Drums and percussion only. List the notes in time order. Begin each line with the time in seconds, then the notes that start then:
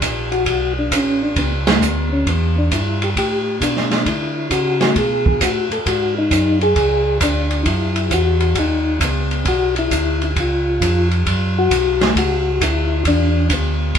0.01 kick, hi-hat pedal, ride
0.32 ride
0.46 kick, ride
0.91 kick, hi-hat pedal, ride
1.36 kick, ride
1.67 snare, ride
1.82 hi-hat pedal
2.26 kick, ride
2.71 kick, hi-hat pedal, ride
3.02 ride
3.16 kick, ride
3.61 kick, hi-hat pedal, ride
3.77 snare
3.91 snare, ride
4.06 kick, ride
4.51 kick, hi-hat pedal, ride
4.81 snare, ride
4.96 kick, ride
5.26 kick
5.41 kick, hi-hat pedal, ride
5.71 ride
5.86 kick, ride
6.31 kick, hi-hat pedal, ride
6.61 ride
6.76 kick, ride
7.21 kick, hi-hat pedal, ride
7.51 ride
7.66 kick, ride
7.96 ride
8.11 kick, hi-hat pedal, ride
8.40 ride
8.55 kick, ride
9.01 kick, hi-hat pedal, ride
9.31 ride
9.45 kick, ride
9.76 ride
9.91 kick, hi-hat pedal, ride
10.22 ride
10.36 kick, ride
10.81 kick, hi-hat pedal, ride
11.11 ride
11.26 kick, ride
11.71 kick, hi-hat pedal, ride
12.01 snare, ride
12.16 kick, ride
12.61 kick, hi-hat pedal, ride
13.05 kick, ride
13.50 kick, hi-hat pedal, ride
13.95 kick, ride